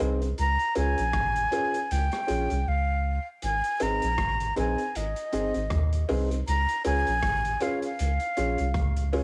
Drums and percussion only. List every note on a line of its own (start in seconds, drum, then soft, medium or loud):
0.00 cowbell medium
0.22 closed hi-hat soft
0.38 closed hi-hat medium
0.59 closed hi-hat soft
0.75 closed hi-hat medium
0.75 cowbell medium
0.98 closed hi-hat medium
1.13 kick loud
1.13 cross-stick loud
1.13 closed hi-hat medium
1.36 closed hi-hat medium
1.52 closed hi-hat medium
1.52 cowbell medium
1.74 closed hi-hat soft
1.91 closed hi-hat medium
2.12 cross-stick medium
2.12 closed hi-hat soft
2.28 closed hi-hat medium
2.50 closed hi-hat medium
3.42 closed hi-hat medium
3.64 closed hi-hat soft
3.80 closed hi-hat medium
3.80 cowbell medium
4.02 closed hi-hat medium
4.18 kick loud
4.18 cross-stick loud
4.18 closed hi-hat medium
4.40 closed hi-hat medium
4.56 closed hi-hat medium
4.56 cowbell medium
4.78 closed hi-hat soft
4.95 closed hi-hat medium
5.16 closed hi-hat soft
5.33 closed hi-hat medium
5.54 closed hi-hat soft
5.70 kick loud
5.70 cross-stick loud
5.70 closed hi-hat medium
5.93 closed hi-hat medium
6.09 open hi-hat soft
6.09 cowbell medium
6.31 closed hi-hat medium
6.48 closed hi-hat medium
6.69 closed hi-hat soft
6.85 closed hi-hat medium
6.85 cowbell medium
7.07 closed hi-hat medium
7.23 kick loud
7.23 cross-stick loud
7.23 closed hi-hat medium
7.45 closed hi-hat medium
7.60 closed hi-hat medium
7.60 cowbell medium
7.82 closed hi-hat soft
7.99 closed hi-hat medium
8.20 closed hi-hat soft
8.37 closed hi-hat medium
8.58 closed hi-hat soft
8.74 kick loud
8.74 cross-stick medium
8.74 closed hi-hat medium
8.97 closed hi-hat medium
9.13 open hi-hat soft
9.13 cowbell medium